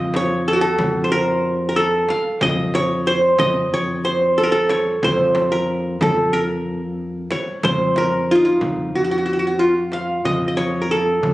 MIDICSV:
0, 0, Header, 1, 5, 480
1, 0, Start_track
1, 0, Tempo, 652458
1, 1779, Time_signature, 4, 2, 24, 8
1, 8340, End_track
2, 0, Start_track
2, 0, Title_t, "Qanun"
2, 0, Program_c, 0, 107
2, 0, Note_on_c, 0, 65, 74
2, 0, Note_on_c, 0, 75, 97
2, 0, Note_on_c, 0, 77, 90
2, 120, Note_on_c, 0, 73, 90
2, 290, Note_off_c, 0, 77, 0
2, 352, Note_on_c, 0, 69, 84
2, 378, Note_off_c, 0, 65, 0
2, 390, Note_on_c, 0, 66, 70
2, 447, Note_off_c, 0, 69, 0
2, 450, Note_on_c, 0, 69, 89
2, 570, Note_off_c, 0, 75, 0
2, 766, Note_on_c, 0, 72, 66
2, 810, Note_off_c, 0, 73, 0
2, 822, Note_on_c, 0, 70, 90
2, 866, Note_off_c, 0, 69, 0
2, 1239, Note_off_c, 0, 70, 0
2, 1242, Note_on_c, 0, 70, 62
2, 1297, Note_on_c, 0, 69, 85
2, 1338, Note_off_c, 0, 66, 0
2, 1341, Note_off_c, 0, 70, 0
2, 1542, Note_off_c, 0, 72, 0
2, 1546, Note_on_c, 0, 77, 78
2, 1784, Note_on_c, 0, 75, 87
2, 2022, Note_on_c, 0, 73, 89
2, 2161, Note_off_c, 0, 69, 0
2, 2199, Note_off_c, 0, 77, 0
2, 2259, Note_on_c, 0, 72, 85
2, 2303, Note_off_c, 0, 73, 0
2, 2484, Note_off_c, 0, 75, 0
2, 2497, Note_on_c, 0, 75, 94
2, 2749, Note_on_c, 0, 73, 97
2, 2793, Note_off_c, 0, 72, 0
2, 2977, Note_on_c, 0, 72, 79
2, 3021, Note_off_c, 0, 73, 0
2, 3197, Note_off_c, 0, 75, 0
2, 3220, Note_on_c, 0, 69, 77
2, 3262, Note_on_c, 0, 70, 68
2, 3306, Note_off_c, 0, 69, 0
2, 3325, Note_on_c, 0, 69, 85
2, 3369, Note_off_c, 0, 70, 0
2, 3460, Note_on_c, 0, 73, 76
2, 3504, Note_off_c, 0, 72, 0
2, 3710, Note_on_c, 0, 72, 85
2, 3754, Note_off_c, 0, 73, 0
2, 4059, Note_on_c, 0, 70, 76
2, 4103, Note_off_c, 0, 69, 0
2, 4432, Note_on_c, 0, 69, 82
2, 4476, Note_off_c, 0, 70, 0
2, 4487, Note_off_c, 0, 72, 0
2, 4657, Note_on_c, 0, 70, 84
2, 4701, Note_off_c, 0, 69, 0
2, 5382, Note_on_c, 0, 73, 68
2, 5489, Note_off_c, 0, 70, 0
2, 5624, Note_on_c, 0, 72, 83
2, 5668, Note_off_c, 0, 73, 0
2, 5868, Note_on_c, 0, 70, 71
2, 6116, Note_on_c, 0, 65, 77
2, 6146, Note_on_c, 0, 63, 62
2, 6213, Note_off_c, 0, 65, 0
2, 6215, Note_on_c, 0, 65, 74
2, 6401, Note_off_c, 0, 72, 0
2, 6587, Note_on_c, 0, 66, 72
2, 6632, Note_off_c, 0, 65, 0
2, 6651, Note_off_c, 0, 66, 0
2, 6654, Note_on_c, 0, 66, 60
2, 6700, Note_off_c, 0, 70, 0
2, 6701, Note_off_c, 0, 66, 0
2, 6704, Note_on_c, 0, 66, 68
2, 6749, Note_off_c, 0, 66, 0
2, 6752, Note_on_c, 0, 66, 52
2, 6807, Note_off_c, 0, 66, 0
2, 6810, Note_on_c, 0, 66, 65
2, 6862, Note_off_c, 0, 66, 0
2, 6865, Note_on_c, 0, 66, 55
2, 6906, Note_off_c, 0, 66, 0
2, 6909, Note_on_c, 0, 66, 62
2, 6964, Note_off_c, 0, 66, 0
2, 6967, Note_on_c, 0, 66, 54
2, 7057, Note_on_c, 0, 65, 77
2, 7101, Note_off_c, 0, 66, 0
2, 7206, Note_off_c, 0, 63, 0
2, 7306, Note_on_c, 0, 77, 77
2, 7543, Note_on_c, 0, 75, 85
2, 7706, Note_off_c, 0, 75, 0
2, 7709, Note_on_c, 0, 75, 53
2, 7776, Note_on_c, 0, 73, 84
2, 7957, Note_on_c, 0, 70, 51
2, 7959, Note_off_c, 0, 77, 0
2, 8027, Note_on_c, 0, 69, 84
2, 8047, Note_off_c, 0, 65, 0
2, 8071, Note_off_c, 0, 70, 0
2, 8340, Note_off_c, 0, 69, 0
2, 8340, Note_off_c, 0, 73, 0
2, 8340, Note_off_c, 0, 75, 0
2, 8340, End_track
3, 0, Start_track
3, 0, Title_t, "Fretless electric bass"
3, 0, Program_c, 1, 35
3, 0, Note_on_c, 1, 41, 103
3, 549, Note_off_c, 1, 41, 0
3, 581, Note_on_c, 1, 41, 94
3, 1510, Note_off_c, 1, 41, 0
3, 1780, Note_on_c, 1, 41, 86
3, 2470, Note_off_c, 1, 41, 0
3, 2496, Note_on_c, 1, 41, 90
3, 2723, Note_off_c, 1, 41, 0
3, 2735, Note_on_c, 1, 41, 76
3, 3667, Note_off_c, 1, 41, 0
3, 3698, Note_on_c, 1, 41, 100
3, 4389, Note_off_c, 1, 41, 0
3, 4420, Note_on_c, 1, 41, 91
3, 5350, Note_off_c, 1, 41, 0
3, 5617, Note_on_c, 1, 41, 84
3, 6308, Note_off_c, 1, 41, 0
3, 6345, Note_on_c, 1, 41, 97
3, 6568, Note_off_c, 1, 41, 0
3, 6580, Note_on_c, 1, 41, 76
3, 7510, Note_off_c, 1, 41, 0
3, 7537, Note_on_c, 1, 41, 95
3, 8229, Note_off_c, 1, 41, 0
3, 8262, Note_on_c, 1, 41, 90
3, 8340, Note_off_c, 1, 41, 0
3, 8340, End_track
4, 0, Start_track
4, 0, Title_t, "Darbuka"
4, 109, Note_on_c, 9, 63, 79
4, 183, Note_off_c, 9, 63, 0
4, 467, Note_on_c, 9, 62, 27
4, 540, Note_off_c, 9, 62, 0
4, 588, Note_on_c, 9, 64, 86
4, 662, Note_off_c, 9, 64, 0
4, 1779, Note_on_c, 9, 64, 89
4, 1853, Note_off_c, 9, 64, 0
4, 2022, Note_on_c, 9, 63, 70
4, 2095, Note_off_c, 9, 63, 0
4, 2377, Note_on_c, 9, 62, 25
4, 2450, Note_off_c, 9, 62, 0
4, 2493, Note_on_c, 9, 64, 91
4, 2566, Note_off_c, 9, 64, 0
4, 3454, Note_on_c, 9, 63, 74
4, 3527, Note_off_c, 9, 63, 0
4, 3696, Note_on_c, 9, 64, 71
4, 3770, Note_off_c, 9, 64, 0
4, 3939, Note_on_c, 9, 63, 76
4, 4013, Note_off_c, 9, 63, 0
4, 4060, Note_on_c, 9, 62, 22
4, 4134, Note_off_c, 9, 62, 0
4, 4298, Note_on_c, 9, 62, 23
4, 4372, Note_off_c, 9, 62, 0
4, 4426, Note_on_c, 9, 64, 77
4, 4500, Note_off_c, 9, 64, 0
4, 4542, Note_on_c, 9, 62, 27
4, 4616, Note_off_c, 9, 62, 0
4, 4790, Note_on_c, 9, 62, 23
4, 4864, Note_off_c, 9, 62, 0
4, 5511, Note_on_c, 9, 62, 27
4, 5585, Note_off_c, 9, 62, 0
4, 5630, Note_on_c, 9, 64, 84
4, 5703, Note_off_c, 9, 64, 0
4, 5869, Note_on_c, 9, 63, 67
4, 5943, Note_off_c, 9, 63, 0
4, 6222, Note_on_c, 9, 62, 23
4, 6296, Note_off_c, 9, 62, 0
4, 6344, Note_on_c, 9, 64, 85
4, 6418, Note_off_c, 9, 64, 0
4, 7300, Note_on_c, 9, 63, 52
4, 7373, Note_off_c, 9, 63, 0
4, 7539, Note_on_c, 9, 64, 79
4, 7612, Note_off_c, 9, 64, 0
4, 7778, Note_on_c, 9, 63, 62
4, 7851, Note_off_c, 9, 63, 0
4, 8141, Note_on_c, 9, 62, 21
4, 8214, Note_off_c, 9, 62, 0
4, 8259, Note_on_c, 9, 64, 93
4, 8333, Note_off_c, 9, 64, 0
4, 8340, End_track
5, 0, Start_track
5, 0, Title_t, "Frame drum"
5, 101, Note_on_c, 9, 64, 64
5, 175, Note_off_c, 9, 64, 0
5, 577, Note_on_c, 9, 64, 87
5, 651, Note_off_c, 9, 64, 0
5, 1535, Note_on_c, 9, 64, 57
5, 1608, Note_off_c, 9, 64, 0
5, 1773, Note_on_c, 9, 64, 90
5, 1847, Note_off_c, 9, 64, 0
5, 2015, Note_on_c, 9, 64, 54
5, 2089, Note_off_c, 9, 64, 0
5, 2490, Note_on_c, 9, 64, 90
5, 2564, Note_off_c, 9, 64, 0
5, 3454, Note_on_c, 9, 64, 70
5, 3527, Note_off_c, 9, 64, 0
5, 3699, Note_on_c, 9, 64, 88
5, 3773, Note_off_c, 9, 64, 0
5, 3934, Note_on_c, 9, 64, 63
5, 4008, Note_off_c, 9, 64, 0
5, 4420, Note_on_c, 9, 64, 89
5, 4494, Note_off_c, 9, 64, 0
5, 5375, Note_on_c, 9, 64, 67
5, 5448, Note_off_c, 9, 64, 0
5, 5616, Note_on_c, 9, 64, 92
5, 5690, Note_off_c, 9, 64, 0
5, 5856, Note_on_c, 9, 64, 64
5, 5930, Note_off_c, 9, 64, 0
5, 6335, Note_on_c, 9, 64, 82
5, 6409, Note_off_c, 9, 64, 0
5, 7296, Note_on_c, 9, 64, 57
5, 7370, Note_off_c, 9, 64, 0
5, 7543, Note_on_c, 9, 64, 73
5, 7616, Note_off_c, 9, 64, 0
5, 7786, Note_on_c, 9, 64, 54
5, 7860, Note_off_c, 9, 64, 0
5, 8263, Note_on_c, 9, 64, 72
5, 8336, Note_off_c, 9, 64, 0
5, 8340, End_track
0, 0, End_of_file